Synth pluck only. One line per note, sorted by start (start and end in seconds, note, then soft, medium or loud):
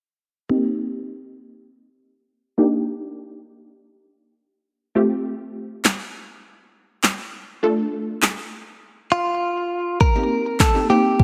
0.49 2.54 A#3 medium
0.49 2.54 C4 medium
0.49 2.54 D#4 medium
0.49 2.54 G4 medium
2.58 4.92 A#3 medium
2.58 4.92 D4 medium
2.58 4.92 D#4 medium
2.58 4.92 G4 medium
4.95 7.29 A3 medium
4.95 7.29 C4 medium
4.95 7.29 F4 medium
4.95 7.29 G4 medium
7.63 9.96 A3 medium
7.63 9.97 D4 medium
7.63 9.97 F4 medium
7.63 9.97 A4 medium
10.15 10.58 A#3 medium
10.15 10.58 C4 medium
10.15 10.58 D#4 medium
10.15 10.58 G4 medium
10.75 10.85 A#3 medium
10.75 10.86 C4 medium
10.75 10.86 D#4 medium
10.75 10.86 G4 medium
10.90 11.22 A#3 medium
10.90 11.22 C4 medium
10.90 11.22 D#4 medium
10.90 11.22 G4 medium